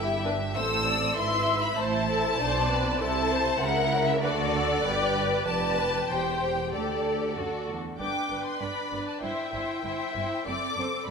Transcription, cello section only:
Already playing: G2
0.56 A2
1.18 G#2
1.78 A2
2.39 B2
3.01 C3
3.62 C#3
4.22 D3
4.84 G2
5.47 F2
6.11 E2
6.74 D2
7.37 F#2
7.69 E2
8.00 G2
8.30 G2
8.61 G2
8.92 G2
9.22 G2
9.53 G2
9.84 G2
10.16 G2
10.47 F#2
10.77 F#2
11.07 F#2

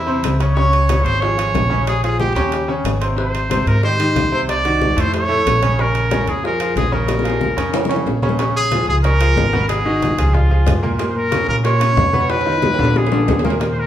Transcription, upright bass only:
Already playing: E2
0.23 C#2
1.04 G#1
1.54 A#1
2.35 D#2
2.84 G#1
3.66 G#2
4.15 C2
4.97 F2
5.46 A#1
6.27 F2
6.76 A#1
7.57 F2
8.06 A#1
8.87 C#2
9.36 G#1
10.18 C#2
10.67 F#2
11.48 A#2
11.97 F2
12.79 A#1
13.28 D#2

